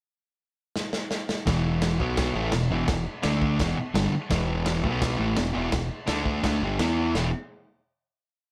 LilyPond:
<<
  \new Staff \with { instrumentName = "Distorted electric guitar" } { \clef bass \time 4/4 \key d \lydian \tempo 4 = 169 r1 | <e, b, e>4. <b, fis b>4 <a, e a>8 <e, b,>8 <e, b, e>8 | <e, b,>8 r8 <d a d'>4 <e, b, e>8 r8 <g, d g>8 r8 | <e, b, e>4. <b, fis b>4 <a, e a>8 <e, b,>8 <e, b, e>8 |
<e, b,>8 r8 <d a d'>4 <d a d'>8 <g, d g>8 <e b e'>4 | <e, b, e>8 r2. r8 | }
  \new Staff \with { instrumentName = "Fingered electric bass" } { \clef bass \time 4/4 \key d \lydian r1 | e,,4. b,,4 a,,8 e,,8 e,,8 | e,,8 r8 d,4 e,,8 r8 g,,8 r8 | e,,4. b,,4 a,,8 e,,8 e,,8 |
e,,8 r8 d,4 d,8 g,,8 e,4 | e,,8 r2. r8 | }
  \new DrumStaff \with { instrumentName = "Drums" } \drummode { \time 4/4 r4 r4 sn8 sn8 sn8 sn8 | <cymc bd sn>4 <cymc sn>8 bd8 <cymc bd sn>4 <cymc sn>4 | <cymc bd sn>4 <cymc sn>8 bd8 <cymc bd sn>4 <cymc sn>4 | <cymc bd sn>4 <cymc sn>8 bd8 <cymc bd sn>4 <cymc sn>4 |
<cymc bd sn>4 <cymc sn>8 bd8 <cymc bd sn>4 <cymc sn>4 | <cymc sn>4 r4 r4 r4 | }
>>